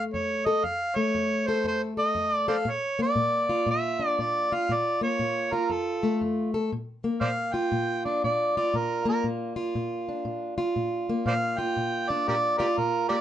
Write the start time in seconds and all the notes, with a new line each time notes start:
Already playing: F2 A3 A4
0.14 F2 C#5
0.45 A4 D#5
0.64 F2 F5
0.95 A3 C#5
1.15 F2
1.47 A4 C5
1.64 F2 C5
1.97 A4 D#5
2.15 F2
2.34 D5
2.48 A4 C5 D5 F5
2.65 A#2
2.70 C#5
2.99 A#3 D5
3.16 A#2
3.49 F4
3.67 A#2 E5
4.00 D4
4.07 D5
4.19 A#2 D5
4.52 F4 F5
4.69 A#2 D5
5.01 A#3 C#5
5.19 A#2
5.53 F4 A#4
5.70 F2 A4
6.03 A3
6.21 F2
6.54 A4
6.72 A#2
7.04 A#3
7.21 A#2 C5 D5 F5
7.53 F4 G5
7.72 A#2
8.05 D4 D5
8.24 A#2 D5
8.57 F4 D5
8.74 A#2 A#4
9.05 A#3 A#4
9.24 A#2
9.56 F4
9.75 A#2
10.09 D4
10.25 A#2
10.58 F4
10.76 A#2
11.09 A#3
11.26 A#2 C5 D5 F5
11.59 F4 G5
11.77 A#2
12.09 D4 D5
12.28 A#2 G4 A#4 D5
12.58 F4 G4 A#4 D5
12.77 A#2 A#4
13.09 A#3 G4 A#4 D5